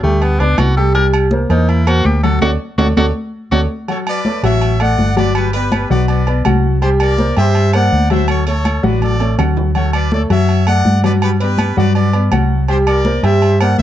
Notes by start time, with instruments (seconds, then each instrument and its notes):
0.03 fingered electric bass D2, grand piano G3 G4 G5, tenor saxophone A3, high conga
0.21 tenor saxophone B3, high conga, low agogo
0.40 fingered electric bass C#2, grand piano B3 B4 D5, tenor saxophone D4, high conga, low agogo
0.58 fingered electric bass C2, tenor saxophone F#4, high conga, low timbale, low agogo, claves
0.76 grand piano G3 G4 G5, tenor saxophone A4, high conga
0.95 grand piano G3 G4 G5, tenor saxophone A#4, high conga, low agogo
1.13 high conga, low agogo, claves
1.31 grand piano A#3 A#4 C5, high conga
1.50 fingered electric bass E2, grand piano A#3 A#4 C5, tenor saxophone D#4, high conga, low agogo
1.68 tenor saxophone E4, high conga, low agogo
1.87 grand piano A#3 A#4 C5, tenor saxophone F#4, high conga, low agogo, claves
2.05 fingered electric bass D2, tenor saxophone G4, high conga
2.23 grand piano F#3 F#4 F#5, tenor saxophone A4, low agogo
2.41 fingered electric bass D2, tenor saxophone F#4, grand piano A4 C#5 D5, high conga, high timbale, claves
2.78 fingered electric bass D2, tenor saxophone F#4, grand piano A4 C#5 D5, high conga, high timbale, claves
2.97 fingered electric bass D2, tenor saxophone F#4, grand piano A4 C#5 D5, high conga, high timbale, claves
3.51 fingered electric bass D2, tenor saxophone F#4, grand piano A4 C#5 D5, high conga, high timbale, claves
3.88 grand piano F#3 F#4 F#5, trumpet section A4 C#5, high conga, low agogo
4.07 trumpet section B4 D5, high conga, low agogo, claves
4.25 grand piano A3 A4 C#5, high conga
4.43 fingered electric bass A1, grand piano F#3 F#4 F#5, trumpet section C#5 E5, high conga, low agogo
4.62 high conga, low agogo
4.80 grand piano A3 A4 D5, trumpet section D5 F#5, high conga, low agogo, claves
4.98 fingered electric bass G1, high conga
5.16 grand piano F#3 F#4 F#5, trumpet section B4 D5, high conga, low agogo
5.35 trumpet section G4 B4, high conga, low agogo, claves
5.53 grand piano B3 B4 D5, trumpet section G4 B4, high conga, low agogo
5.72 high conga, low agogo, claves
5.90 fingered electric bass B1, grand piano F#3 F#4 F#5, trumpet section B4 D5, high conga
6.08 trumpet section B4 D5, high conga, low agogo
6.27 grand piano B3 B4 D5, high conga, low agogo
6.45 fingered electric bass C2, grand piano F#3 F#4 F#5, high conga, low agogo, claves
6.63 high conga
6.82 grand piano G3 G4 G5, trumpet section G4 C5, high conga, low agogo
7.00 trumpet section A#4 D5, high conga, low agogo, claves
7.18 grand piano A#3 A#4 C5, high conga
7.37 fingered electric bass G2, grand piano G3 G4 G5, trumpet section C5 E5, high conga, low agogo
7.55 high conga, low agogo
7.73 grand piano A#3 A#4 C5, trumpet section D5 F#5, high conga, low agogo, claves
7.92 fingered electric bass D2, high conga
8.10 grand piano F#3 F#4 F#5, trumpet section C5 E5, high conga, low agogo
8.28 trumpet section A4 C#5, high conga, low agogo, claves
8.47 grand piano A3 A4 C#5, trumpet section A4 C#5, high conga, low agogo
8.65 high conga, low agogo, claves
8.83 fingered electric bass A1, grand piano F#3 F#4 F#5, trumpet section B4 D5, high conga
9.02 trumpet section A4 D5, low conga, low agogo
9.20 grand piano A3 A4 C#5, high timbale, low agogo
9.38 fingered electric bass D2, grand piano F#3 F#4 F#5, low conga, high timbale, low agogo, claves
9.57 low conga, low timbale
9.75 grand piano F#3 F#4 F#5, trumpet section A4 C#5, high conga, low agogo
9.93 trumpet section B4 D5, high conga, low agogo, claves
10.12 grand piano A3 A4 C#5, trumpet section A4 D5, high conga
10.30 fingered electric bass F#2, grand piano F#3 F#4 F#5, trumpet section C#5 E5, high conga, low agogo
10.49 high conga, low agogo
10.67 grand piano A3 A4 D5, trumpet section D5 F#5, high conga, low agogo, claves
10.85 fingered electric bass G2, high conga
11.03 grand piano F#3 F#4 F#5, trumpet section B4 D5, low agogo
11.22 trumpet section G4 B4, high conga, low agogo, claves
11.40 grand piano B3 B4 D5, trumpet section G4 B4, high conga, low agogo
11.58 high conga, low agogo, claves
11.77 fingered electric bass G2, grand piano F#3 F#4 F#5, trumpet section B4 D5, high conga
11.95 trumpet section B4 D5, high conga, low agogo
12.13 grand piano B3 B4 D5, high conga, low agogo
12.32 fingered electric bass C2, grand piano F#3 F#4 F#5, high conga, low agogo, claves
12.50 high conga
12.68 grand piano G3 G4 G5, trumpet section G4 C5, high conga, low agogo
12.87 trumpet section A#4 D5, high conga, low agogo, claves
13.05 grand piano A#3 A#4 C5, high conga
13.23 fingered electric bass G2, grand piano G3 G4 G5, trumpet section C5 E5, high conga, low agogo
13.42 high conga, low agogo
13.60 grand piano A#3 A#4 C5, trumpet section D5 F#5, high conga, low agogo, claves
13.78 fingered electric bass D2, trumpet section E5, high conga